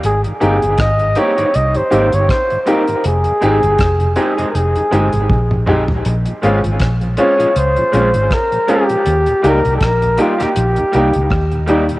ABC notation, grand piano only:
X:1
M:4/4
L:1/16
Q:"Swing 16ths" 1/4=80
K:Bbdor
V:1 name="Grand piano"
z2 [B,CEG] z3 [B,CEG] z2 [EG] [B,CEG] z3 [B,CEG] z | z2 [A,CEG] z3 [A,CEG] z2 [EG] [A,CEG] z3 [A,CEG] z | z2 [A,CDF] z3 [A,CDF] z2 [DF] [A,CDF] z3 [A,CDF] z | z2 [G,B,EG] z3 [G,B,EG] z2 [EG] [G,B,EG] z3 [G,B,EG] z |]